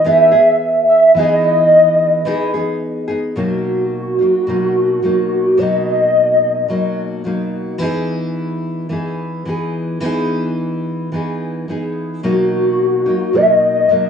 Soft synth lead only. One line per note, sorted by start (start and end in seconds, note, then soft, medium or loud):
0.06 0.87 E5 loud
0.88 1.19 E5 medium
1.17 2.82 D#5 loud
3.37 5.59 F#4 medium
5.58 7.52 D#5 loud
12.24 13.36 F#4 loud
13.35 13.42 D#5 loud
13.40 13.51 E5 medium
13.49 14.10 D#5 loud